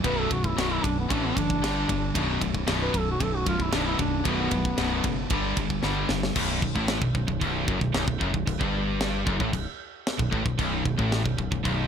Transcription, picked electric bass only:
0.04 B0
0.31 B0
0.56 B0
0.84 B0
1.11 A1
1.37 F#1
1.63 G1
1.89 G1
2.15 B0
2.41 B0
2.67 B0
2.94 B0
3.21 B0
3.47 B0
3.72 B0
3.99 B0
4.26 B0
4.51 B0
4.78 B0
5.04 F#1
5.31 G1
5.57 G1
5.83 G1
6.09 G1
6.36 B0
6.63 B0
6.75 A1
7.01 B0
7.15 B0
7.28 B0
7.42 B0
7.69 F#1
7.81 B0
7.94 B0
8.08 B0
8.21 F#1
8.34 B0
8.47 B0
8.61 G1
9.27 F#1
9.40 A1
9.53 B0
10.20 B0
10.33 A1
10.46 B0
10.59 B0
10.86 B0
10.99 A1
11.25 B0
11.39 B0
11.52 B0
11.65 B0

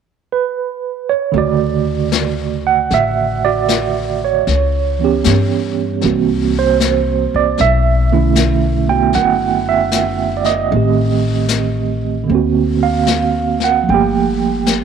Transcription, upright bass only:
1.34 D2
2.91 A1
4.47 C#2
5.26 G2
6.04 C2
7.34 C2
7.60 B1
9.16 F#1
10.72 A1
12.30 D2
13.89 G1

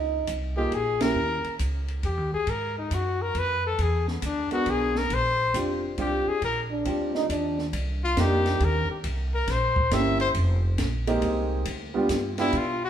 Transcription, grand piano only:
0.57 A#3 D#4 F4 G#4
1.00 A#3 C#4 E4 G4
4.51 B3 D4 G#4 A#4
5.54 C4 D4 F4 G4
5.98 C4 D4 F4 G4
6.85 C4 D4 F4 G4
8.17 A#3 C4 D4 D#4 G4
9.92 A#3 C4 C#4 E4 G4
11.07 G#3 A#3 C4 D#4 G4
11.94 G3 B3 D4 F4 G4
12.38 G3 B3 D4 F4 G4

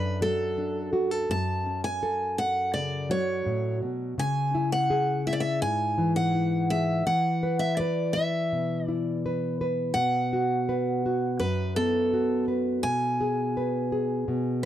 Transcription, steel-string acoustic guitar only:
Already playing: B4
0.22 A4
1.31 A5
1.84 G#5
2.38 F#5
2.74 D5
3.11 C#5
4.19 G#5
4.72 F#5
5.27 E5
5.33 D5
5.40 E5
5.62 G#5
6.16 F#5
6.70 E5
7.07 F#5
7.59 E5
7.77 D5
8.13 E5
8.86 D5
9.94 F#5
11.40 B4
11.76 A4
12.83 G#5

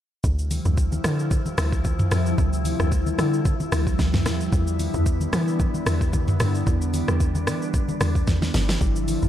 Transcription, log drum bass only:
0.24 D2
0.65 D2
1.04 D3
1.58 D2
2.11 F2
2.38 D2
2.80 D2
3.19 D3
3.72 D2
3.99 D2
4.26 E2
4.53 E2
4.94 E2
5.33 E3
5.86 E2
6.40 G2
6.67 E2
7.08 E2
7.47 E3
8.01 E2
8.28 E2
8.54 G1
8.81 G1
9.23 G1

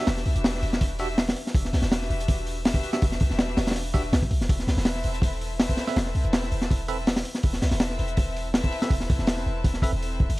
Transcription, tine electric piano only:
0.00 D4 F#4 G4 E5
0.99 D4 F#4 G4 E5
2.93 D4 F#4 G4 E5
3.94 D4 F#4 G4 E5
5.88 C4 A4 B4 E5
6.88 C4 A4 B4 E5
8.82 C4 A4 B4 E5
9.83 C4 A4 B4 E5

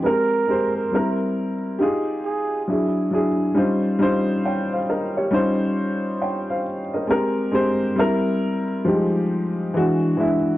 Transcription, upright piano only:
0.03 G#3 C4 G4 A#4
0.47 G#3 C4 G4 C5
0.92 G3 C4 E4 A#4
1.79 D#4 F4 G4 G#4
2.68 F#3 D4 E4 G#4
3.11 F#3 D4 E4 G#4
3.54 G3 C#4 D#4 F4 C5
3.99 G3 C#4 D#4 F4 C5
4.45 C#5 G5
4.73 C5 F5
4.89 A#4 D#5
5.17 G4 C#5
5.31 G3 C#4 D#4 F4 C5
6.22 C#5 G5
6.50 C5 F5
6.93 A#4 D#5
7.07 G#3 C4 G4 A#4
7.52 G#3 C4 G4 C5
7.96 G3 C4 E4 A#4
8.85 F3 G3 D#4 G4
8.92 G#3
9.74 E3 G#3 D4 F#4
10.17 E3 G#3 D4 E4

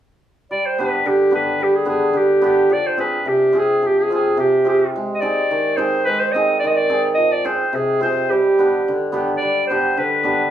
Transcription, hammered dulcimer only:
0.51 G3
0.78 B3 D4 G4
1.06 D3
1.31 B3 D4 G4
1.60 G3
1.85 B3 D4 G4
2.13 D3
2.42 B3 D4 G4
2.70 F3
2.97 C4 F4 G#4
3.25 C3
3.53 C4 F4 G#4
3.82 F3
4.10 C4 F4 G#4
4.37 C3
4.65 C4 F4 G#4
4.96 G#3
5.22 C4 D#4 G#4
5.51 D#3
5.77 C4 D#4 G#4
6.07 G#3
6.34 C4 D#4 G#4
6.64 D#3
6.89 C4 D#4 G#4
7.18 F3
7.44 C4 F4 G#4
7.73 C3
8.00 C4 F4 G#4
8.31 G3
8.58 B3 D4 G4
8.88 D3
9.12 B3 D4 G4
9.42 G3
9.70 B3 D4 G4
9.97 D3
10.23 B3 D4 G4

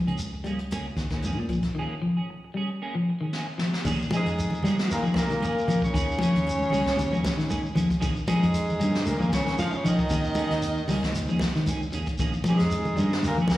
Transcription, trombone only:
4.13 G#3
4.93 A#3
5.19 A#3
5.85 C#4
8.29 G#3
9.06 A#3
9.33 C#4
9.59 F4
9.74 C#4
9.84 D#4
12.48 G#3
13.27 A#3

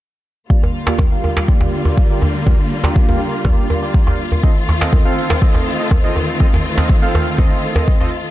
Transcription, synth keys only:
0.50 A#3 F4 G4 D5
0.88 A#3 F4 G4 D5
1.12 A#3 F4 G4 F5
1.48 A#3 F4 G4 D5
1.86 A#3 F4 G4 D5
2.10 A#3 F4 G4 D5
2.47 A#3 F4 G4 D5
2.84 A#3 F4 G4 D5
3.09 A#3 F4 G4 F5
3.45 A#3 F4 G4 D5
3.82 A#3 F4 G4 D5
4.07 A#3 F4 G4 D5
4.43 C4 F4 A4 D#5
4.81 C4 F4 A4 D#5
5.05 C4 F4 A4 F5
5.42 C4 F4 A4 D#5
5.79 C4 F4 A4 D#5
6.04 C4 F4 A4 D#5
6.40 C4 F4 A4 D#5
6.78 C4 F4 A4 D#5
7.02 C4 F4 A4 F5
7.38 C4 F4 A4 D#5
7.76 C4 F4 A4 D#5
8.00 C4 F4 A4 D#5

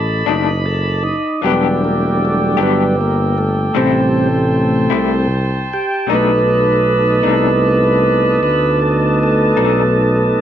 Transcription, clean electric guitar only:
0.26 B2 D#3 A3 D4
1.42 E3 B3 D4 G4
2.57 E3 B3 D4 G4
3.75 A2 G3 C4 E4
4.90 A2 G3 C4 E4
6.07 B2 A3 D4 D#4
7.23 B2 A3 D4 D#4
9.57 B2 A3 D4 D#4

